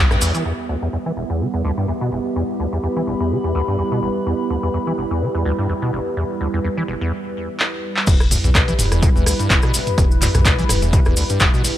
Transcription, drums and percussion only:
0.11 cross-stick, cabasa
0.21 open hi-hat, cabasa
0.35 closed hi-hat, cabasa
7.60 clap
7.97 clap
8.07 kick, closed hi-hat, crash, cabasa
8.20 cross-stick, cabasa
8.31 mid tom, open hi-hat, cabasa
8.44 closed hi-hat, cabasa
8.55 kick, cross-stick, clap, closed hi-hat, cabasa
8.68 closed hi-hat, cabasa
8.79 mid tom, open hi-hat, cabasa
8.92 cross-stick, closed hi-hat, cabasa
9.03 kick, closed hi-hat, cabasa
9.16 cabasa
9.26 cross-stick, open hi-hat, cabasa
9.39 closed hi-hat, cabasa
9.50 kick, clap, closed hi-hat, cabasa
9.62 cross-stick, cabasa
9.74 open hi-hat, cabasa
9.87 closed hi-hat, mid tom, cabasa
9.98 kick, cross-stick, closed hi-hat, cabasa
10.11 cabasa
10.22 clap, mid tom, open hi-hat, cabasa
10.34 cross-stick, closed hi-hat, mid tom, cabasa
10.45 kick, clap, closed hi-hat, cabasa
10.58 closed hi-hat, cabasa
10.69 cross-stick, mid tom, open hi-hat, cabasa
10.82 closed hi-hat, cabasa
10.93 kick, closed hi-hat, cabasa
11.05 cross-stick, cabasa
11.16 open hi-hat, cabasa
11.29 closed hi-hat, cabasa
11.40 kick, cross-stick, clap, closed hi-hat, cabasa
11.54 cabasa
11.64 open hi-hat, cabasa

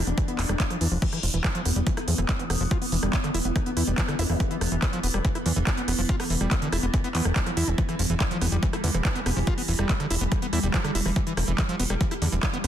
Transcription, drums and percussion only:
0.07 closed hi-hat
0.18 kick, cross-stick, closed hi-hat
0.28 closed hi-hat
0.39 clap, open hi-hat
0.49 cross-stick, closed hi-hat
0.60 kick, clap, closed hi-hat
0.70 cross-stick, closed hi-hat
0.81 open hi-hat
1.02 kick, closed hi-hat, crash
1.13 cross-stick, closed hi-hat
1.23 open hi-hat
1.34 closed hi-hat
1.44 kick, cross-stick, clap, closed hi-hat
1.55 closed hi-hat
1.65 cross-stick, open hi-hat
1.76 closed hi-hat
1.87 kick, closed hi-hat
1.97 cross-stick, closed hi-hat
2.08 open hi-hat
2.18 cross-stick, closed hi-hat
2.29 kick, clap, closed hi-hat
2.39 closed hi-hat
2.50 cross-stick, open hi-hat
2.71 kick, cross-stick, closed hi-hat
2.82 open hi-hat
2.92 open hi-hat
3.03 cross-stick, closed hi-hat
3.13 kick, clap, closed hi-hat
3.24 cross-stick, closed hi-hat
3.34 open hi-hat
3.45 closed hi-hat
3.56 kick, cross-stick, closed hi-hat
3.66 closed hi-hat
3.77 cross-stick, open hi-hat
3.87 closed hi-hat
3.98 kick, clap, closed hi-hat
4.08 cross-stick, closed hi-hat
4.19 open hi-hat
4.30 cross-stick
4.40 kick, closed hi-hat
4.51 closed hi-hat
4.61 cross-stick, open hi-hat
4.72 closed hi-hat
4.82 kick, cross-stick, clap, closed hi-hat
4.93 closed hi-hat
5.04 open hi-hat
5.14 cross-stick, closed hi-hat
5.25 kick, closed hi-hat
5.35 cross-stick, closed hi-hat
5.46 open hi-hat
5.56 closed hi-hat
5.67 kick, cross-stick, clap, closed hi-hat
5.77 closed hi-hat
5.88 cross-stick, open hi-hat
6.09 kick, closed hi-hat
6.20 cross-stick, open hi-hat
6.30 open hi-hat
6.41 cross-stick, closed hi-hat
6.51 kick, clap, closed hi-hat
6.62 closed hi-hat
6.73 cross-stick, open hi-hat
6.83 closed hi-hat
6.94 kick, cross-stick, closed hi-hat
7.04 closed hi-hat
7.15 clap, open hi-hat
7.25 cross-stick, closed hi-hat
7.36 kick, clap, closed hi-hat
7.46 cross-stick, closed hi-hat
7.57 open hi-hat
7.68 closed hi-hat
7.78 kick, closed hi-hat
7.89 cross-stick, closed hi-hat
7.99 open hi-hat
8.10 closed hi-hat
8.20 kick, cross-stick, clap, closed hi-hat
8.31 closed hi-hat
8.42 cross-stick, open hi-hat
8.52 closed hi-hat
8.63 kick, closed hi-hat
8.73 cross-stick, closed hi-hat
8.84 open hi-hat
8.94 cross-stick, closed hi-hat
9.05 kick, clap, closed hi-hat
9.15 closed hi-hat
9.26 cross-stick, open hi-hat
9.47 kick, cross-stick, closed hi-hat
9.58 open hi-hat
9.68 open hi-hat
9.79 cross-stick, closed hi-hat
9.89 kick, clap, closed hi-hat
10.00 cross-stick, closed hi-hat
10.11 open hi-hat
10.21 closed hi-hat
10.32 kick, cross-stick, closed hi-hat
10.42 closed hi-hat
10.53 cross-stick, open hi-hat
10.63 closed hi-hat
10.74 kick, clap, closed hi-hat
10.84 cross-stick, closed hi-hat
10.95 open hi-hat
11.06 cross-stick
11.16 kick, closed hi-hat
11.27 closed hi-hat
11.37 cross-stick, open hi-hat
11.48 closed hi-hat
11.58 kick, cross-stick, clap, closed hi-hat
11.69 closed hi-hat
11.80 open hi-hat
11.90 cross-stick, closed hi-hat
12.01 kick, closed hi-hat
12.11 cross-stick, closed hi-hat
12.22 open hi-hat
12.32 closed hi-hat
12.43 kick, cross-stick, clap, closed hi-hat
12.54 closed hi-hat

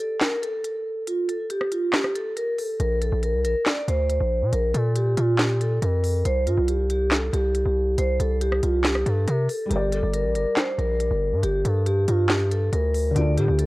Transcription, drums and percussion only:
0.21 snare, clap, closed hi-hat
0.43 closed hi-hat
0.64 closed hi-hat
1.07 closed hi-hat
1.29 closed hi-hat
1.50 closed hi-hat
1.61 cross-stick
1.72 closed hi-hat
1.93 snare, clap, closed hi-hat
2.04 cross-stick
2.15 closed hi-hat
2.37 closed hi-hat
2.58 open hi-hat
2.80 closed hi-hat
3.02 closed hi-hat
3.23 closed hi-hat
3.45 closed hi-hat
3.66 snare, clap, closed hi-hat
3.88 closed hi-hat
4.09 closed hi-hat
4.53 closed hi-hat
4.74 closed hi-hat
4.96 closed hi-hat
5.17 closed hi-hat
5.39 snare, clap, closed hi-hat
5.61 closed hi-hat
5.82 closed hi-hat
6.04 open hi-hat
6.25 closed hi-hat
6.47 closed hi-hat
6.68 closed hi-hat
6.90 closed hi-hat
7.11 snare, clap, closed hi-hat
7.33 closed hi-hat
7.55 closed hi-hat
7.98 closed hi-hat
8.20 closed hi-hat
8.41 closed hi-hat
8.52 cross-stick
8.63 closed hi-hat
8.84 snare, clap, closed hi-hat
8.95 cross-stick
9.06 closed hi-hat
9.27 closed hi-hat
9.49 open hi-hat
9.71 closed hi-hat
9.92 closed hi-hat
10.14 closed hi-hat
10.35 closed hi-hat
10.57 snare, clap, closed hi-hat
10.79 closed hi-hat
11.00 closed hi-hat
11.43 closed hi-hat
11.65 closed hi-hat
11.86 closed hi-hat
12.08 closed hi-hat
12.29 snare, clap, closed hi-hat
12.51 closed hi-hat
12.73 closed hi-hat
12.94 open hi-hat
13.16 closed hi-hat
13.38 closed hi-hat
13.59 closed hi-hat

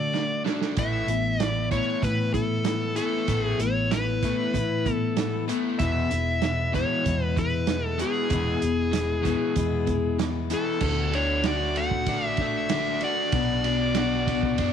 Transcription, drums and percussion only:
0.14 snare
0.46 snare
0.61 snare
0.77 kick, closed hi-hat
1.08 closed hi-hat
1.40 snare, closed hi-hat
1.71 kick, closed hi-hat
2.03 kick, closed hi-hat
2.34 kick, closed hi-hat
2.65 snare, closed hi-hat
2.96 closed hi-hat
3.28 kick, closed hi-hat
3.60 closed hi-hat
3.91 snare, closed hi-hat
4.23 kick, closed hi-hat
4.54 kick, closed hi-hat
4.86 kick, closed hi-hat
5.17 snare, closed hi-hat
5.49 closed hi-hat
5.79 kick, closed hi-hat
6.11 closed hi-hat
6.42 snare, closed hi-hat
6.74 kick, closed hi-hat
7.06 kick, closed hi-hat
7.37 kick, closed hi-hat
7.67 snare, closed hi-hat
7.99 closed hi-hat
8.30 kick, closed hi-hat
8.62 closed hi-hat
8.93 snare, closed hi-hat
9.25 kick, closed hi-hat
9.56 kick, closed hi-hat
9.87 kick, closed hi-hat
10.19 snare, closed hi-hat
10.50 closed hi-hat
10.80 kick, crash
11.13 ride
11.44 snare, ride
11.76 ride
11.91 kick
12.06 kick, ride
12.37 kick, ride
12.69 snare, ride
13.01 ride
13.32 kick, ride
13.64 ride
13.95 snare, ride
14.27 kick, ride
14.43 kick
14.58 kick, ride

